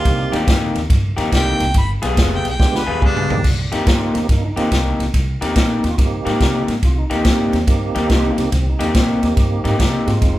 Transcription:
Already playing: G3 A#3 C4 D#4 F4 G4
0.05 C2, kick, snare, ride
0.32 D#2 C3 A#3 D#4 G4, snare, ride
0.46 G2 C3 A#3 D#4 G4, kick, snare, ride
0.75 D#2, snare, ride
0.90 G2, kick, snare, ride
1.17 D#2 C3 A#3 D#4 G4, snare, ride
1.31 C2 C3 A#3 D#4 G4, kick, snare, ride
1.35 G5
1.60 C2, snare, ride
1.74 G1 B5, kick, snare, ride
2.02 B1 G3 B3 F4 G#4, snare, ride
2.16 F1 G3 B3 F4 G#4, kick, snare, ride
2.35 G5
2.45 B1, snare, ride
2.49 G5
2.59 D2 G#3 B3 D4 F4 G4, kick, snare
2.75 B4, snare
2.86 D#2 G3 B3 F4 G#4
3.01 G2 G3 B3 F4 G#4, kick, mid tom
3.05 D4
3.16 mid tom
3.30 D#2 G3 A#3 C4 D#4 G4, floor tom
3.44 C2, kick, snare, crash
3.72 D#2 C3 A#3 D#4 G4, snare, ride
3.84 G2 C3 A#3 D#4 E4 G4, kick, ride
3.88 C4 F4, snare
4.02 C4 F4
4.14 D#2 A#3 C4 D#4 G4, snare, ride
4.29 G2 A#3 D#4, kick, snare, ride
4.40 D4
4.45 D#4
4.56 D#2 C3 A#3 C4 D#4 F4 G4, snare, ride
4.71 C2 C3 A#3 D#4 G4, kick, snare, ride
4.99 C2, snare, ride
5.14 C2, kick, snare, ride
5.41 D#2 C3 A#3 D#4 G4, snare, ride
5.55 A#1 C3 A#3 C4 D#4 G4, kick, snare, ride
5.72 D#4
5.83 D#2 F4, snare, ride
5.95 G2 A#3 C4 D#4 F#4, kick, ride
5.99 G4, snare
6.25 G#2 C3 A#3 D#4 G4, snare, ride
6.40 C3 A#3 D#4 G4, kick, snare, ride
6.68 G#2, snare, ride
6.83 C2 F4, kick, snare, ride
6.98 D#4
7.10 D#2 C3 A#3 D#4 G4, snare, ride
7.24 G2 C3 G3 A#3 C4 D#4 G4, kick, snare, ride
7.52 D#2, snare, ride
7.67 G2 A#3 C4 D#4 G4, kick, snare, ride
7.95 D#2 C3 A#3 D#4 G4, snare, ride
8.10 C2 C3 A#3 D#4 F4 G4, kick, snare, ride
8.26 D#4
8.38 C2 A#3 C4 D#4 G4, snare, ride
8.52 C2 C4, kick, snare, ride
8.69 D#4
8.79 D#2 C3 A#3 D#4 G4, snare, ride
8.94 A#1 C3 A#3 C4 D#4 G4, kick, snare, ride
9.22 D#2 A#3 C4 D#4 G4, snare, ride
9.37 G2, kick, snare, ride
9.64 G#2 C3 A#3 D#4 G4, snare, ride
9.79 C3 A#3 D#4 G4, kick, snare, ride
10.06 G#2 G#3 C4 D#4 F4, snare, ride
10.22 F1, kick, snare, ride

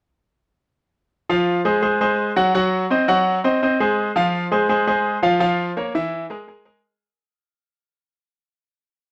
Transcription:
1.29 F3 F4 F5
1.65 G#3 G#4 C5
1.82 G#3 G#4 C5
2.01 G#3 G#4 C5
2.36 F#3 F#4 F#5
2.55 F#3 F#4 F#5
2.90 C4 C5 D#5
3.08 F#3 F#4 F#5
3.44 C4 C5 D#5
3.63 C4 C5 D#5
3.80 G#3 G#4 C5
4.16 F3 F4 F5
4.52 G#3 G#4 C5
4.69 G#3 G#4 C5
4.87 G#3 G#4 C5
5.23 F3 F4 F5
5.40 F3 F4 F5
5.77 A#3 A#4 C#5
5.95 E3 E4 E5
6.30 G#3 G#4 A#4
6.47 G#3 G#4 A#4
6.65 G#3 G#4 A#4

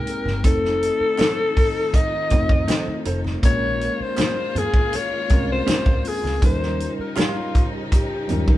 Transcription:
Already playing: C3 G#3 A#3 C4 D#4 A#4 G5
0.07 closed hi-hat
0.25 G1, snare, high conga
0.43 F1 D#3 F3 A3 C4 D#4 F4 A4 C5, kick, closed hi-hat, muted conga
0.65 snare
0.83 closed hi-hat
1.00 muted fingered electric bass stroke
1.18 D#4 A4 C5, snare, clap, closed hi-hat, high conga
1.56 kick, open hi-hat, muted conga
1.94 D#5, kick, closed hi-hat, muted conga
2.30 F1 A3 C4 D#4 F4 C5, kick, closed hi-hat, muted conga, low conga
2.49 F2, kick
2.68 D#4 A4 C5, snare, clap, closed hi-hat, high conga
2.88 muted fingered electric bass stroke
3.05 F1 D#4 A4 C5, closed hi-hat
3.24 snare, high conga
3.42 A#1 G#3 A#3 C#4 F4 A#4 C#5, kick, closed hi-hat, muted conga
3.81 closed hi-hat
4.00 C5, muted fingered electric bass stroke
4.17 C#4 G#4 C5, snare, clap, closed hi-hat, high conga
4.55 G#4, closed hi-hat, muted conga, low conga
4.74 kick
4.93 C#5, closed hi-hat, muted conga
5.28 C2 G#3 C4 C#4 F4 A#4, kick, closed hi-hat, muted conga
5.52 C5
5.67 C#4 G#4 C5, muted fingered electric bass stroke, snare, clap, closed hi-hat, high conga
5.86 C#2, kick
6.05 G#4, open hi-hat
6.24 C#2, snare, high conga
6.40 D#2 C#3 F3 G3 C#4 D#4 F4 A#4, kick, closed hi-hat, muted conga
6.45 C5
6.62 snare
6.80 closed hi-hat
6.99 A#4, muted fingered electric bass stroke
7.16 F4 G4 C#5, snare, clap, closed hi-hat, high conga
7.54 kick, closed hi-hat, muted conga
7.92 G4, kick, closed hi-hat, muted conga
8.28 D#2 F#3 C#4 D#4 F4 A#4, closed hi-hat, muted conga, low conga
8.34 G3
8.48 D#3, kick

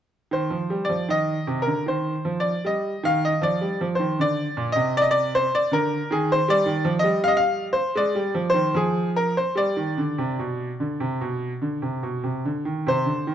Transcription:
0.31 D#3 C5
0.50 F3
0.70 G3
0.85 D5
0.89 F3
1.09 D#3 D#5
1.47 C3
1.62 A#4
1.67 D3
1.86 D#3 C5
2.25 F3
2.40 D5
2.65 G3 D#5
3.03 D#3 F5
3.25 D#5
3.41 F3 D5
3.61 G3
3.81 F3
3.95 C5
3.99 D#3
4.19 D3 D5
4.57 A#2
4.72 C3 D#5
4.97 D5
5.02 D#5
5.11 D5
5.35 C5
5.55 D5
5.72 D3 A#4
6.11 D#3 G#4
6.32 C5
6.48 G3 D5
6.66 D#3
6.85 F3
6.99 D#5
7.04 G3
7.24 F5
7.28 D#5
7.37 F5
7.73 C5
7.95 G#3 D5
8.15 G3
8.35 F3
8.50 C5
8.54 D#3
8.74 F3 G#4
9.16 A#4
9.37 C5
9.55 G3 D5
9.77 D#3
9.97 D3
10.18 C3
10.39 B2
10.80 D3
11.00 C3
11.21 B2
11.62 D3
11.82 C3
12.03 B2
12.24 C3
12.45 D3
12.65 D#3
12.87 C3 C5
13.06 D3
13.27 D#3

